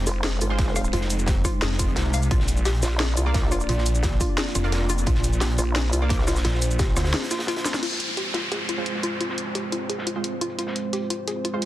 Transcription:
Already playing: synth stab G#3 F4 C5, analog synth pad G#3 C4 D#4 C5
0.07 wobble bass F1, synth arpeggio sound F4, closed hi-hat, open hi-hat, cabasa
0.24 synth arpeggio sound G#4, snare, closed hi-hat
0.41 wobble bass G1, synth arpeggio sound F4, closed hi-hat, cabasa
0.50 synth stab G#3 F4 C5
0.58 kick, snare, closed hi-hat
0.66 snare
0.76 synth arpeggio sound F5, cross-stick, closed hi-hat, open hi-hat, cabasa
0.84 cabasa
0.93 detuned saw bass F1, synth arpeggio sound F4, closed hi-hat
1.01 snare
1.10 closed hi-hat, cabasa
1.19 cabasa
1.26 synth arpeggio sound G4, kick, snare, closed hi-hat, cabasa
1.45 synth arpeggio sound F4, kick, cross-stick, closed hi-hat, open hi-hat, cabasa
1.62 detuned saw bass F1, synth arpeggio sound G#4, snare, closed hi-hat
1.72 snare
1.79 synth arpeggio sound F4, kick, closed hi-hat, cabasa
1.87 closed hi-hat
1.96 detuned saw bass C2, snare, closed hi-hat
2.14 synth arpeggio sound F5, closed hi-hat, open hi-hat, cabasa
2.22 closed hi-hat, cabasa
2.31 detuned saw bass A#1, analog synth pad A#3 D4 F4 D5, synth arpeggio sound F4, kick, closed hi-hat
2.40 snare
2.48 closed hi-hat, cabasa
2.57 cabasa
2.65 synth arpeggio sound G4, snare, closed hi-hat, cabasa
2.74 closed hi-hat
2.83 wobble bass A#1, synth arpeggio sound F4, snare, closed hi-hat, open hi-hat, cabasa
3.00 synth arpeggio sound G#4, snare, closed hi-hat
3.17 wobble bass C2, synth arpeggio sound F4, closed hi-hat, cabasa
3.26 synth stab A#3 F4 D5
3.34 kick, snare, closed hi-hat
3.42 snare
3.52 synth arpeggio sound F4, cross-stick, closed hi-hat, open hi-hat, cabasa
3.60 cabasa
3.69 detuned saw bass A#1, synth arpeggio sound F4, closed hi-hat
3.78 snare
3.86 closed hi-hat, cabasa
3.95 cabasa
4.03 synth arpeggio sound G4, kick, snare, closed hi-hat, cabasa
4.20 synth arpeggio sound F4, kick, closed hi-hat, open hi-hat, cabasa
4.38 synth arpeggio sound G#4, snare, closed hi-hat
4.46 snare
4.55 detuned saw bass F1, synth arpeggio sound F4, cross-stick, closed hi-hat, cabasa
4.64 synth stab A#3 F4 D5, closed hi-hat
4.72 snare, closed hi-hat
4.89 synth arpeggio sound F4, closed hi-hat, open hi-hat, cabasa
4.98 closed hi-hat, cabasa
5.06 detuned saw bass A#1, synth arpeggio sound F4, analog synth pad C5, kick, closed hi-hat
5.15 snare
5.24 closed hi-hat, cabasa
5.33 cabasa
5.41 synth arpeggio sound G4, snare, closed hi-hat, cabasa
5.50 closed hi-hat
5.58 wobble bass A#1, synth arpeggio sound F4, cross-stick, closed hi-hat, open hi-hat, cabasa
5.76 synth arpeggio sound G#4, snare, closed hi-hat
5.93 wobble bass C2, synth arpeggio sound F4, closed hi-hat, cabasa
6.02 synth stab A#3 F4 D5
6.09 kick, snare, closed hi-hat
6.19 snare
6.27 synth arpeggio sound F4, cross-stick, snare, closed hi-hat, open hi-hat, cabasa
6.36 snare, closed hi-hat, cabasa
6.44 detuned saw bass A#1, synth arpeggio sound F4, snare, closed hi-hat
6.54 snare
6.62 closed hi-hat, cabasa
6.71 cabasa
6.79 synth arpeggio sound G4, kick, snare, closed hi-hat, cabasa
6.96 detuned saw bass D2, synth arpeggio sound F4, cross-stick, snare, closed hi-hat, open hi-hat, cabasa
7.04 snare, closed hi-hat
7.14 synth arpeggio sound G#4, snare, closed hi-hat
7.22 snare, closed hi-hat
7.31 synth arpeggio sound F4, snare, closed hi-hat, cabasa
7.39 snare, closed hi-hat
7.47 synth arpeggio sound F4, snare, closed hi-hat
7.56 snare, closed hi-hat
7.65 synth arpeggio sound F4, snare, closed hi-hat, open hi-hat, cabasa
7.74 snare, closed hi-hat, cabasa
7.83 analog synth pad G#3 C4 F4 C5, synth arpeggio sound F4, closed hi-hat, crash, downlifter
7.92 snare
8.00 closed hi-hat
8.17 synth arpeggio sound G4, closed hi-hat
8.26 closed hi-hat
8.34 synth arpeggio sound F4, snare, closed hi-hat
8.52 synth arpeggio sound G#4, snare, closed hi-hat
8.69 synth arpeggio sound F4, closed hi-hat
8.78 synth stab G#3 F4 C5
8.86 closed hi-hat
8.95 snare
9.02 synth arpeggio sound F4, closed hi-hat
9.21 synth arpeggio sound F4, closed hi-hat
9.30 snare
9.38 closed hi-hat
9.55 synth arpeggio sound G4, closed hi-hat
9.72 synth arpeggio sound F4, closed hi-hat
9.89 synth arpeggio sound G#4, closed hi-hat
9.98 snare
10.06 synth arpeggio sound F4, closed hi-hat
10.15 synth stab G#3 F4 C5, closed hi-hat
10.24 closed hi-hat
10.41 synth arpeggio sound F4, closed hi-hat
10.50 closed hi-hat
10.59 synth arpeggio sound F4, closed hi-hat
10.67 snare
10.76 closed hi-hat
10.93 synth arpeggio sound G4, closed hi-hat
11.02 closed hi-hat
11.10 synth arpeggio sound F4, closed hi-hat
11.27 synth arpeggio sound G#4, closed hi-hat
11.44 synth arpeggio sound F4, closed hi-hat
11.53 synth stab G#3 F4 C5
11.62 closed hi-hat

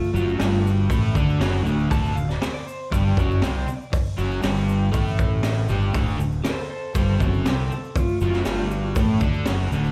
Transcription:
Already playing: electric slide guitar A3 F4
0.03 shaker
0.13 fingered electric bass F#1, overdriven electric guitar F#2 F#3, electric slide guitar A3 F4, shaker
0.29 shaker
0.39 fingered electric bass G1, overdriven electric guitar G2 G3, electric slide guitar A3 F4, snare, open hi-hat, shaker
0.64 electric slide guitar F#4, shaker
0.89 fingered electric bass A1, overdriven electric guitar A2 A3, kick, open hi-hat, shaker
1.14 fingered electric bass D2, overdriven electric guitar D3 D4, kick, shaker
1.29 shaker
1.39 fingered electric bass F#1, overdriven electric guitar F#2 F#3, snare, open hi-hat, shaker
1.63 fingered electric bass D1, overdriven electric guitar D2 D3, shaker
1.79 shaker
1.89 fingered electric bass D1, overdriven electric guitar D2 D3, electric slide guitar A5, kick, open hi-hat, shaker
2.05 shaker
2.15 fingered electric bass D1, overdriven electric guitar D2, electric slide guitar F5, shaker
2.29 electric slide guitar D5, snare, shaker
2.41 electric slide guitar C5, muted overdriven electric guitar stroke, muted fingered electric bass stroke, snare, open hi-hat, shaker
2.54 electric slide guitar D5
2.67 electric slide guitar C5, shaker
2.91 fingered electric bass G1, overdriven electric guitar G2 G3, electric slide guitar D5, kick, open hi-hat, shaker
3.17 fingered electric bass F#1, overdriven electric guitar F#2 F#3, kick, shaker
3.31 shaker
3.42 fingered electric bass C2, overdriven electric guitar C3 C4, snare, open hi-hat, shaker
3.67 muted overdriven electric guitar stroke, muted fingered electric bass stroke, shaker
3.81 shaker
3.92 muted overdriven electric guitar stroke, muted fingered electric bass stroke, kick, open hi-hat, shaker
4.05 shaker
4.17 fingered electric bass F#1, overdriven electric guitar F#2 F#3, shaker
4.31 shaker
4.42 fingered electric bass G1, overdriven electric guitar G2 G3, snare, open hi-hat, shaker
4.57 shaker
4.69 shaker
4.92 fingered electric bass A1, overdriven electric guitar A2 A3, kick, open hi-hat, shaker
5.08 shaker
5.19 kick, shaker
5.43 snare, open hi-hat, shaker
5.69 fingered electric bass G1, overdriven electric guitar G2 G3, shaker
5.82 shaker
5.94 fingered electric bass D1, overdriven electric guitar D2 D3, kick, open hi-hat, shaker
6.08 shaker
6.19 fingered electric bass D1, overdriven electric guitar D2, shaker
6.32 shaker
6.44 electric slide guitar A4 C5, muted overdriven electric guitar stroke, muted fingered electric bass stroke, snare, open hi-hat, shaker
6.69 electric slide guitar A4 C5
6.94 fingered electric bass G1, overdriven electric guitar G2 G3, electric slide guitar A4 C5, kick, open hi-hat, shaker
7.19 fingered electric bass F#1, overdriven electric guitar F#2 F#3, electric slide guitar C4 A4, kick, shaker
7.33 shaker
7.44 fingered electric bass C2, overdriven electric guitar C3 C4, electric slide guitar C4 A4, snare, open hi-hat, shaker
7.69 electric slide guitar C4 A4, muted fingered electric bass stroke, muted overdriven electric guitar stroke, shaker
7.84 shaker
7.95 electric slide guitar A3 F4, muted fingered electric bass stroke, muted overdriven electric guitar stroke, kick, open hi-hat, shaker
8.09 shaker
8.21 fingered electric bass F#1, overdriven electric guitar F#2 F#3, electric slide guitar A3 F4, shaker
8.33 snare, shaker
8.45 fingered electric bass G1, overdriven electric guitar G2 G3, electric slide guitar A3 F4, snare, open hi-hat, shaker
8.71 electric slide guitar F#4, shaker
8.96 fingered electric bass A1, overdriven electric guitar A2 A3, kick, open hi-hat, shaker
9.21 fingered electric bass D2, overdriven electric guitar D3 D4, kick, shaker
9.34 shaker
9.46 fingered electric bass F#1, overdriven electric guitar F#2 F#3, snare, open hi-hat, shaker
9.72 fingered electric bass D1, overdriven electric guitar D2 D3, shaker
9.85 shaker

